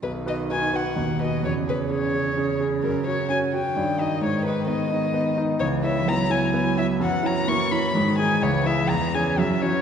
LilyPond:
<<
  \new Staff \with { instrumentName = "Violin" } { \time 3/4 \key cis \dorian \tempo 4 = 128 b'8 dis''8 gis''8 fis''4 dis''8 | cis''8 b'8 cis''4. r8 | ais'8 cis''8 gis''8 g''4 dis''8 | cis''8 b'8 dis''4. r8 |
cis''8 e''8 ais''8 gis''4 e''8 | fis''8 ais''8 cis'''8 b''4 gis''8 | cis''8 e''8 ais''8 gis''8 e''8 cis''8 | }
  \new Staff \with { instrumentName = "Grand piano" } { \time 3/4 \key cis \dorian b,,8 <fis' b'>8 <dis' fis' b'>8 <fis' b'>8 dis,8 <fis' b'>8 | e,8 <gis' cis''>8 <cis' gis' cis''>8 <gis' cis''>8 <cis' gis' cis''>8 <gis' cis''>8 | fis,8 <fis' cis''>8 <cis' fis' cis''>8 <fis' cis''>8 g,8 <dis' dis''>8 | gis,8 <dis' dis''>8 <b dis' dis''>8 <dis' dis''>8 <b dis' dis''>8 <dis' dis''>8 |
cis,8 <e' cis''>8 <b e' cis''>8 <e' cis''>8 <b e' cis''>8 <e' cis''>8 | fis,8 <e' cis''>8 <ais e' cis''>8 <e' cis''>8 gis,8 <dis' gis'>8 | cis,8 <e' gis'>8 e,8 <cis' gis'>8 fis,8 <cis' fis'>8 | }
  \new Staff \with { instrumentName = "Cello" } { \clef bass \time 3/4 \key cis \dorian dis2 b,4 | cis2.~ | cis2 dis4~ | dis2. |
e4 fis2 | e2 dis4 | e4 e4 fis8 e8 | }
>>